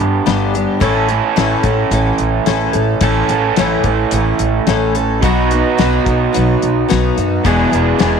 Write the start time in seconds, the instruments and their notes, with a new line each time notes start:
Already playing: overdriven electric guitar G2 D3 G3 B3 D4 G4, twelve-string acoustic guitar G3 B3 D4 G4
0.00 upright bass G1
0.26 upright bass G1, twelve-string acoustic guitar G2 D3 G3 B3 D4 G4, snare, closed hi-hat
0.54 twelve-string acoustic guitar G3 B3 D4 G4, closed hi-hat
0.80 upright bass A1, twelve-string acoustic guitar A2 E3 A3 C#4 A4, kick, closed hi-hat
1.09 twelve-string acoustic guitar A3 C#4 A4, closed hi-hat
1.36 upright bass A1, twelve-string acoustic guitar A2 E3 A3 C#4 A4, snare, closed hi-hat
1.63 upright bass A1, twelve-string acoustic guitar A3 C#4 A4, kick, closed hi-hat
1.91 upright bass A1, twelve-string acoustic guitar E3 A3 C#4 A4, closed hi-hat
2.18 upright bass A1, closed hi-hat
2.46 upright bass A1, twelve-string acoustic guitar A2 E3 A3 C#4 A4, snare, closed hi-hat
2.73 upright bass A1, twelve-string acoustic guitar A3 C#4 A4, closed hi-hat
3.01 upright bass A1, twelve-string acoustic guitar A2 E3 A3 C#4 A4, kick, closed hi-hat
3.29 upright bass A1, twelve-string acoustic guitar A3 C#4 A4, closed hi-hat
3.56 upright bass A1, twelve-string acoustic guitar A2 E3 A3 C#4 A4, snare, closed hi-hat
3.84 upright bass A1, twelve-string acoustic guitar A3 C#4 A4, kick, closed hi-hat
4.11 upright bass A1, twelve-string acoustic guitar E3 A3 C#4, closed hi-hat
4.16 twelve-string acoustic guitar A4
4.39 upright bass A1, closed hi-hat
4.67 upright bass A1, twelve-string acoustic guitar A2 E3 A3 C#4 A4, snare, closed hi-hat
4.95 twelve-string acoustic guitar A3 C#4 A4, closed hi-hat
5.23 upright bass B1, twelve-string acoustic guitar B2 F#3 B3 D#4 F#4, kick, closed hi-hat
5.51 twelve-string acoustic guitar B3 D#4 F#4, closed hi-hat
5.78 upright bass B1, twelve-string acoustic guitar B2 F#3 B3 D#4 F#4, snare, closed hi-hat
6.05 upright bass B1, twelve-string acoustic guitar B3 D#4 F#4, kick, closed hi-hat
6.33 upright bass B1, twelve-string acoustic guitar F#3 B3 D#4 F#4, closed hi-hat
6.62 upright bass B1, closed hi-hat
6.88 upright bass B1, twelve-string acoustic guitar B2 F#3 B3 D#4 F#4, snare, closed hi-hat
7.17 upright bass F#2, twelve-string acoustic guitar B3 D#4 F#4, closed hi-hat
7.44 upright bass E1, twelve-string acoustic guitar E2 B2 E3 B3 D4 G#4, kick, closed hi-hat
7.71 upright bass E1, twelve-string acoustic guitar E3 B3 D4 G#4, closed hi-hat
7.99 upright bass E1, twelve-string acoustic guitar E2 B2 E3 B3 D4 G#4, snare, closed hi-hat